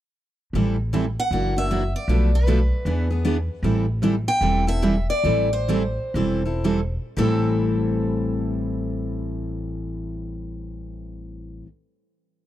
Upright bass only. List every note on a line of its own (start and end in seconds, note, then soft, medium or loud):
0.53 1.16 A1 medium
1.31 1.93 F#1 medium
2.08 2.70 B1 medium
2.85 3.47 E2 medium
3.63 4.26 A1 medium
4.41 5.07 E1 medium
5.24 5.96 A1 medium
6.14 6.96 E1 medium
7.17 11.61 A1 medium